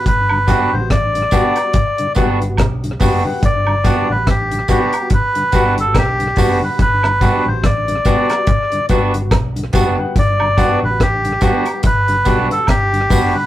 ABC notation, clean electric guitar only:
X:1
M:4/4
L:1/8
Q:"Swing 16ths" 1/4=71
K:G
V:1 name="Clean electric guitar"
z [B,DF] z [B,DF] z [B,DF] z [B,DF] | z [B,DF] z [B,DF] z [B,DF] z [B,DF] | z [B,DF] z [B,DF] z [B,DF] z [B,DF] | z [B,DF] z [B,DF] z [B,DF] z [B,DF] |]